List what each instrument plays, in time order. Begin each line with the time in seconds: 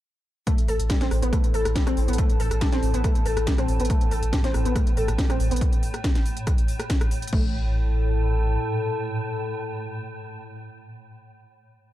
0.47 synth drone A2, synth arpeggio sound A3, ambient pad E4, kick, closed hi-hat
0.55 ambient pad A4, closed hi-hat
0.68 sub bass A1, synth arpeggio sound A4, open hi-hat
0.80 sub bass A1, closed hi-hat
0.90 synth arpeggio sound G3, kick, snare, closed hi-hat
1.01 sub bass A1, synth arpeggio sound C4, snare, closed hi-hat
1.11 sub bass A1, cross-stick, open hi-hat
1.22 sub bass A1, synth arpeggio sound B3, closed hi-hat
1.33 synth arpeggio sound A3, ambient pad A5, kick, cross-stick, closed hi-hat
1.44 closed hi-hat
1.54 sub bass A1, synth arpeggio sound A4, open hi-hat
1.65 sub bass A1, cross-stick, closed hi-hat
1.76 synth arpeggio sound G3, kick, snare, closed hi-hat
1.87 sub bass A1, synth arpeggio sound C4, cross-stick, closed hi-hat
1.97 sub bass A1, open hi-hat
2.08 sub bass A1, synth arpeggio sound B3, closed hi-hat
2.13 closed hi-hat
2.18 synth arpeggio sound A3, kick, closed hi-hat
2.30 closed hi-hat
2.40 sub bass A1, synth arpeggio sound A4, open hi-hat
2.51 sub bass A1, cross-stick, closed hi-hat
2.61 synth arpeggio sound G3, kick, snare, closed hi-hat
2.72 sub bass A1, synth arpeggio sound C4, snare, closed hi-hat
2.83 sub bass A1, open hi-hat
2.94 sub bass A1, synth arpeggio sound B3, closed hi-hat
3.04 synth arpeggio sound A3, kick, cross-stick, closed hi-hat
3.15 closed hi-hat
3.26 sub bass A1, synth arpeggio sound A4, open hi-hat
3.37 sub bass A1, cross-stick, closed hi-hat
3.47 synth arpeggio sound G3, kick, snare, closed hi-hat
3.58 sub bass A1, synth arpeggio sound C4, cross-stick, closed hi-hat
3.68 sub bass A1, open hi-hat
3.80 sub bass A1, synth arpeggio sound B3, closed hi-hat
3.85 closed hi-hat
3.90 synth arpeggio sound A3, kick, closed hi-hat
4.01 closed hi-hat
4.11 sub bass A1, synth arpeggio sound A4, open hi-hat
4.23 sub bass A1, closed hi-hat
4.33 synth arpeggio sound G3, kick, snare, closed hi-hat
4.44 sub bass A1, synth arpeggio sound C4, snare, closed hi-hat
4.54 sub bass A1, cross-stick, open hi-hat
4.65 sub bass A1, synth arpeggio sound B3, closed hi-hat
4.76 synth arpeggio sound A3, kick, cross-stick, closed hi-hat
4.87 closed hi-hat
4.97 sub bass A1, synth arpeggio sound A4, open hi-hat
5.08 sub bass A1, cross-stick, closed hi-hat
5.18 synth arpeggio sound G3, kick, snare, closed hi-hat
5.30 sub bass A1, synth arpeggio sound C4, cross-stick, closed hi-hat
5.40 sub bass A1, open hi-hat
5.51 sub bass A1, synth arpeggio sound B3, closed hi-hat
5.56 closed hi-hat
5.61 kick, closed hi-hat
5.73 closed hi-hat
5.83 open hi-hat
5.94 cross-stick, closed hi-hat
6.04 kick, snare, closed hi-hat
6.15 snare, closed hi-hat
6.26 open hi-hat
6.37 closed hi-hat
6.47 kick, cross-stick, closed hi-hat
6.58 closed hi-hat
6.68 open hi-hat
6.80 cross-stick, closed hi-hat
6.90 kick, snare, closed hi-hat
7.01 cross-stick, closed hi-hat
7.11 open hi-hat
7.22 closed hi-hat
7.28 closed hi-hat
7.33 sub bass A1, synth drone A2, synth arpeggio sound A3, ambient pad E4, kick, crash
7.40 ambient pad A4
7.46 ambient pad A5